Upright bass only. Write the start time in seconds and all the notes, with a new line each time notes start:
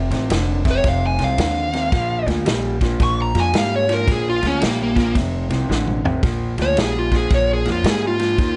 0.10 A1
0.30 F1
0.84 F1
1.18 C2
1.38 D#2
1.92 A#1
2.26 D2
2.46 A#1
3.00 A#1
3.35 F2
3.53 G#2
4.07 A#1
4.42 D2
4.62 A#1
5.15 F1
5.50 C2
5.69 A1
6.23 A#1
6.58 D2
6.76 A#1
7.31 A#1
7.65 F2
7.83 G#2
8.38 D#2